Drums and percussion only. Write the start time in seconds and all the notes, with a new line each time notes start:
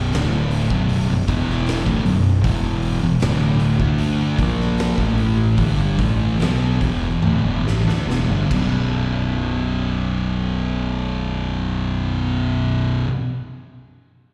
0.12 snare, open hi-hat
0.51 open hi-hat
0.70 kick
0.89 open hi-hat
1.28 kick, open hi-hat
1.50 snare
1.67 snare, open hi-hat
1.86 kick
2.06 open hi-hat
2.44 kick, open hi-hat
2.82 open hi-hat
3.20 snare, open hi-hat
3.60 open hi-hat
3.80 kick
3.98 open hi-hat
4.38 kick, open hi-hat
4.60 snare
4.78 snare, open hi-hat
4.98 kick
5.18 open hi-hat
5.58 kick, open hi-hat
5.99 kick, open hi-hat
6.40 snare, open hi-hat
6.81 kick, open hi-hat
7.23 high tom
7.68 snare
7.89 snare
8.10 snare
8.51 kick, crash